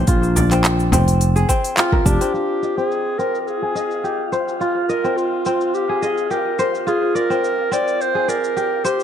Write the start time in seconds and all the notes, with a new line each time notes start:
Already playing: C4 G4 C5 D5
0.07 A#1 F4, kick, open hi-hat, cabasa
0.23 cabasa
0.36 D5, open hi-hat, frame drum, cabasa
0.51 C4, clap, open hi-hat, cabasa
0.65 clap, open hi-hat, cabasa
0.80 cabasa
0.92 F1 C4, open hi-hat, frame drum, cabasa
1.08 open hi-hat, cabasa
1.21 open hi-hat, cabasa
1.36 G#4, cabasa
1.49 C4, kick, open hi-hat, cabasa
1.64 open hi-hat, cabasa
1.77 F4, clap, open hi-hat, cabasa
1.92 A#4, kick, frame drum
2.05 F1 D4 G4, kick, cabasa
2.21 C4, open hi-hat, cabasa
2.34 F4 F5, cabasa
2.62 D#5, cabasa
2.77 C4 G#4, cabasa
2.91 cabasa
3.19 C4 A#4, cabasa
3.35 cabasa
3.41 A#4
3.48 G#4, cabasa
3.62 G#4
3.75 D#5, cabasa
3.91 cabasa
4.04 G4, cabasa
4.32 C5, cabasa
4.48 cabasa
4.61 F4, cabasa
4.89 A#4 D#5, cabasa
5.04 C4, cabasa
5.17 F4, cabasa
5.45 C4, cabasa
5.61 cabasa
5.74 G4, cabasa
5.89 G#4
6.02 G#4 D#5, cabasa
6.18 cabasa
6.31 G4 A#4, cabasa
6.59 C5, cabasa
6.75 cabasa
6.87 F4 G#4, cabasa
7.15 A#4 D5, cabasa
7.30 C4, cabasa
7.44 cabasa
7.71 C4 D5, cabasa
7.88 cabasa
8.01 C5, cabasa
8.15 G#4
8.28 A#4 D5, cabasa
8.44 cabasa
8.57 G4, cabasa
8.85 G4 C5, cabasa
9.00 cabasa